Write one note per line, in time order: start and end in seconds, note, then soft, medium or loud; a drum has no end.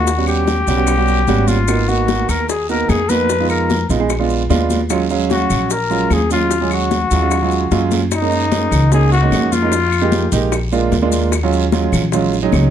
0.00 0.61 D#2 medium
0.00 0.25 F#4 medium
0.07 high bongo medium
0.07 high conga soft
0.07 long guiro medium
0.07 maracas medium
0.18 0.53 G3 medium
0.18 0.53 B3 medium
0.18 0.53 C#4 medium
0.18 0.53 F#4 medium
0.27 1.49 G4 loud
0.27 high conga soft
0.27 claves medium
0.27 maracas soft
0.47 high bongo medium
0.47 high conga medium
0.47 short guiro medium
0.47 maracas soft
0.67 1.24 B1 medium
0.67 0.75 G3 medium
0.67 0.75 B3 medium
0.67 0.75 C#4 medium
0.67 0.75 F#4 medium
0.67 high bongo soft
0.67 high conga soft
0.67 short guiro medium
0.67 maracas medium
0.77 0.91 G3 medium
0.77 0.92 B3 medium
0.77 0.92 C#4 medium
0.77 0.92 F#4 medium
0.87 high bongo medium
0.87 high conga soft
0.87 long guiro medium
0.87 claves medium
0.87 maracas medium
0.98 1.19 G3 medium
0.98 1.19 B3 medium
0.98 1.19 C#4 medium
0.98 1.19 F#4 medium
1.07 high bongo soft
1.07 high conga soft
1.07 maracas soft
1.27 2.22 G#1 medium
1.27 1.56 G3 loud
1.27 1.56 B3 medium
1.27 1.56 C#4 medium
1.27 1.56 F#4 loud
1.27 high bongo soft
1.27 low bongo medium
1.27 high conga medium
1.27 short guiro medium
1.27 maracas soft
1.48 1.90 F4 medium
1.48 high bongo soft
1.48 high conga medium
1.48 short guiro medium
1.48 maracas medium
1.68 1.82 A#3 medium
1.68 1.82 B3 medium
1.68 1.82 D#4 medium
1.68 1.82 F#4 medium
1.68 high bongo medium
1.68 high conga soft
1.68 long guiro medium
1.68 claves medium
1.68 maracas medium
1.88 2.44 A#3 medium
1.88 2.45 B3 medium
1.88 2.44 D#4 medium
1.88 2.45 F#4 medium
1.88 2.31 F#4 medium
1.88 high conga soft
1.88 maracas soft
2.08 high bongo medium
2.08 high conga loud
2.08 short guiro medium
2.08 maracas soft
2.28 2.85 D#2 medium
2.28 2.48 A#4 medium
2.28 high bongo soft
2.28 high conga soft
2.28 short guiro medium
2.28 claves medium
2.28 maracas medium
2.48 2.68 G#4 medium
2.48 high bongo medium
2.48 high conga soft
2.48 long guiro medium
2.48 maracas medium
2.69 2.97 A#3 medium
2.69 2.97 B3 medium
2.69 2.97 D#4 medium
2.69 2.97 F#4 medium
2.69 2.90 A#4 medium
2.69 high bongo soft
2.69 high conga soft
2.69 maracas soft
2.89 3.83 F2 medium
2.89 3.11 G#4 medium
2.89 high bongo soft
2.89 low bongo medium
2.89 high conga medium
2.89 short guiro medium
2.89 claves medium
2.89 maracas soft
3.09 3.30 A#3 medium
3.09 3.30 B3 medium
3.09 3.29 D#4 medium
3.09 3.30 F#4 medium
3.09 3.49 B4 loud
3.09 high bongo soft
3.09 high conga medium
3.09 short guiro medium
3.09 maracas medium
3.29 high bongo medium
3.29 high conga soft
3.29 long guiro medium
3.29 maracas medium
3.40 3.75 G#3 medium
3.40 3.75 B3 medium
3.40 3.75 D#4 medium
3.40 3.75 F4 medium
3.49 3.87 A#4 medium
3.49 high conga soft
3.49 claves medium
3.49 maracas soft
3.70 high bongo medium
3.70 high conga medium
3.70 short guiro medium
3.70 maracas soft
3.89 4.46 A#1 medium
3.89 3.97 G#3 medium
3.89 3.97 B3 medium
3.89 3.97 D#4 medium
3.89 3.97 F4 medium
3.89 high bongo soft
3.89 high conga soft
3.89 short guiro medium
3.89 maracas medium
3.99 4.10 G#3 medium
3.99 4.10 B3 medium
3.99 4.09 D#4 medium
3.99 4.09 G#4 medium
4.10 high bongo medium
4.10 high conga soft
4.10 long guiro medium
4.10 claves medium
4.10 maracas medium
4.19 4.40 G#3 medium
4.19 4.40 B3 medium
4.19 4.41 D4 medium
4.19 4.41 F4 loud
4.30 high bongo soft
4.30 high conga soft
4.30 maracas soft
4.49 5.44 D#2 medium
4.49 4.78 G#3 medium
4.49 4.78 B3 medium
4.49 4.78 D4 medium
4.49 4.78 F4 loud
4.49 high bongo soft
4.49 low bongo medium
4.49 high conga medium
4.49 short guiro medium
4.49 maracas soft
4.70 high bongo soft
4.70 high conga medium
4.70 short guiro medium
4.70 maracas medium
4.90 5.04 F#3 medium
4.90 5.04 G#3 medium
4.90 5.04 C#4 medium
4.90 5.04 F4 medium
4.90 high bongo medium
4.90 high conga soft
4.90 long guiro medium
4.90 claves medium
4.90 maracas medium
5.10 5.66 F#3 medium
5.10 5.66 G#3 medium
5.10 5.67 C#4 medium
5.10 5.67 F5 loud
5.10 high conga soft
5.10 maracas soft
5.30 5.73 F#4 medium
5.30 high bongo medium
5.30 high conga medium
5.30 short guiro medium
5.30 maracas soft
5.50 6.06 A#1 medium
5.50 short guiro medium
5.50 claves medium
5.50 maracas medium
5.70 6.14 A#4 loud
5.70 high bongo medium
5.70 high conga soft
5.70 long guiro medium
5.70 maracas medium
5.90 6.18 F#3 medium
5.90 6.18 G#3 medium
5.90 6.18 C#4 medium
5.90 6.18 F4 medium
5.90 high bongo soft
5.90 high conga soft
5.90 maracas soft
6.10 7.05 D#2 medium
6.10 6.32 G#4 loud
6.10 high bongo soft
6.10 low bongo medium
6.10 high conga medium
6.10 short guiro medium
6.10 claves medium
6.10 maracas soft
6.30 6.52 F#3 medium
6.30 6.52 G#3 medium
6.30 6.52 C#4 medium
6.30 6.52 F4 medium
6.30 6.69 F4 medium
6.30 high bongo soft
6.30 high conga medium
6.30 short guiro medium
6.30 maracas medium
6.51 high bongo medium
6.51 high conga soft
6.51 long guiro medium
6.51 maracas medium
6.61 6.96 F#3 medium
6.61 6.96 G#3 medium
6.61 6.96 C#4 medium
6.61 6.96 G#4 medium
6.71 7.88 F#4 medium
6.71 claves medium
6.71 maracas soft
6.91 high bongo medium
6.91 high conga medium
6.91 short guiro medium
6.91 maracas soft
7.11 7.67 D#2 medium
7.11 7.18 F#3 medium
7.11 7.18 G#3 medium
7.11 7.18 C#4 medium
7.11 7.18 F4 medium
7.11 high bongo soft
7.11 high conga soft
7.11 short guiro medium
7.11 maracas medium
7.21 7.35 F#3 medium
7.21 7.35 G#3 medium
7.21 7.35 C#4 medium
7.21 7.35 F4 loud
7.31 high bongo medium
7.31 high conga soft
7.31 long guiro medium
7.31 claves medium
7.31 maracas medium
7.42 7.63 F#3 medium
7.42 7.63 G#3 medium
7.42 7.63 C#4 medium
7.42 7.63 F4 medium
7.51 high bongo soft
7.51 high conga soft
7.51 maracas soft
7.71 8.66 F#2 medium
7.71 7.99 F#3 medium
7.71 7.99 G#3 medium
7.71 7.99 C#4 medium
7.71 8.00 F4 loud
7.71 high bongo medium
7.71 high conga medium
7.71 short guiro medium
7.71 maracas soft
7.91 low bongo medium
7.91 high conga medium
7.91 short guiro medium
7.91 maracas medium
8.11 8.88 D#4 medium
8.11 high bongo medium
8.11 high conga soft
8.11 long guiro medium
8.11 claves medium
8.11 maracas medium
8.22 8.43 G#3 medium
8.22 8.43 A#3 medium
8.22 8.43 C#4 medium
8.22 8.43 D#4 medium
8.32 high conga soft
8.32 maracas soft
8.52 8.80 G#3 medium
8.52 8.80 A#3 medium
8.52 8.80 C#4 medium
8.52 8.80 D#4 medium
8.52 high bongo medium
8.52 high conga loud
8.52 short guiro medium
8.52 maracas soft
8.71 9.28 C#2 medium
8.71 high bongo soft
8.71 high conga soft
8.71 low conga medium
8.71 short guiro medium
8.71 claves medium
8.71 maracas medium
8.92 9.13 G#3 medium
8.92 9.13 A#3 medium
8.92 9.13 C#4 medium
8.92 9.13 D#4 medium
8.92 9.11 G#4 medium
8.92 high bongo medium
8.92 high conga soft
8.92 long guiro medium
8.92 maracas medium
9.12 9.54 F#4 loud
9.12 high bongo soft
9.12 high conga soft
9.12 maracas soft
9.22 9.50 G#3 medium
9.22 9.50 A#3 medium
9.22 9.50 C#4 medium
9.22 9.50 D#4 medium
9.31 10.26 F2 medium
9.31 high bongo soft
9.31 low bongo medium
9.31 high conga medium
9.31 short guiro medium
9.31 claves medium
9.31 maracas soft
9.52 10.32 F4 medium
9.52 high bongo soft
9.52 high conga medium
9.52 short guiro medium
9.52 maracas medium
9.62 9.72 G#3 medium
9.62 9.72 A#3 medium
9.62 9.72 C#4 medium
9.62 9.72 D#4 medium
9.72 high bongo medium
9.72 high conga soft
9.72 long guiro medium
9.72 maracas medium
9.92 high conga soft
9.92 claves medium
9.92 maracas soft
10.01 10.23 G#3 medium
10.01 10.23 A#3 medium
10.01 10.23 D#4 medium
10.01 10.23 G4 medium
10.12 high bongo medium
10.12 high conga loud
10.12 short guiro medium
10.12 maracas soft
10.32 10.88 A#1 medium
10.32 10.53 G#3 medium
10.32 10.53 A#3 medium
10.32 10.53 D#4 medium
10.32 10.53 G4 medium
10.32 high bongo soft
10.32 high conga soft
10.32 short guiro medium
10.32 maracas medium
10.52 high bongo medium
10.52 high conga soft
10.52 long guiro medium
10.52 claves medium
10.52 maracas medium
10.72 10.93 G#3 medium
10.72 10.94 A#3 medium
10.72 10.93 D4 medium
10.72 10.94 F4 loud
10.72 high bongo soft
10.72 high conga soft
10.72 maracas soft
10.92 11.87 D#2 medium
10.92 high bongo soft
10.92 low bongo medium
10.92 high conga medium
10.92 short guiro medium
10.92 maracas soft
11.02 11.30 G#3 loud
11.02 11.30 A#3 medium
11.02 11.31 D4 medium
11.02 11.31 F4 loud
11.12 high bongo soft
11.12 high conga medium
11.12 short guiro medium
11.12 maracas medium
11.32 high bongo medium
11.32 high conga soft
11.32 long guiro medium
11.32 claves medium
11.32 maracas medium
11.43 11.64 F#3 medium
11.43 11.64 G#3 medium
11.43 11.64 C#4 medium
11.43 11.64 F4 loud
11.52 high conga soft
11.52 maracas soft
11.72 12.01 F#3 medium
11.72 12.01 G#3 medium
11.72 12.01 C#4 medium
11.72 12.01 F4 medium
11.72 high bongo medium
11.72 high conga loud
11.72 short guiro medium
11.72 maracas soft
11.92 12.49 A#1 medium
11.92 high bongo soft
11.92 high conga soft
11.92 low conga medium
11.92 short guiro medium
11.92 claves medium
11.92 maracas medium
12.12 12.34 F#3 medium
12.12 12.34 G#3 medium
12.12 12.34 C#4 medium
12.12 12.34 F4 loud
12.12 high bongo medium
12.12 high conga soft
12.12 low conga medium
12.12 long guiro medium
12.12 maracas medium
12.32 high bongo soft
12.32 maracas soft
12.43 12.70 F#3 medium
12.43 12.70 G#3 medium
12.43 12.70 C#4 medium
12.43 12.70 D#4 loud
12.52 12.70 C#2 loud
12.52 high bongo soft
12.52 low bongo medium
12.52 high conga medium
12.52 short guiro medium
12.52 claves medium
12.52 maracas soft